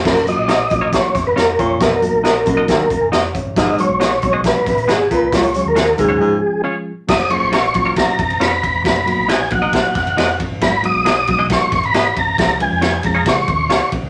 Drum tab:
CC |x---------------|----------------|----------------|----------------|
RD |----------------|----------------|----------------|----------------|
HH |-xx-x-x-x-x-x-x-|x-x-x-x-x-x-x-x-|x-x-x-x-x-xxx-x-|xxx-x-x---------|
SD |o---o---o-o-o---|o---o---o---o---|o---o---o-o-o---|o---o-----------|
BD |o-----o-o-o---o-|o-----o-o-o---o-|o-----o-o-o---o-|o-----o---------|

CC |x---------------|----------------|----------------|----------------|
RD |-xx-x-x-x-xxx-x-|xxx-x-x-x-xxx-x-|x-x-x-x-x-xxx-x-|xxx-x-x-x-x-x-x-|
HH |----------------|----------------|----------------|----------------|
SD |o---o---o---o---|o---o---o-o-o---|o---o---o-o-o---|o---o---o---o---|
BD |o-----o-o-o---o-|o-----o-o-o---o-|o-----o-o-o---o-|o-----o-o-o---o-|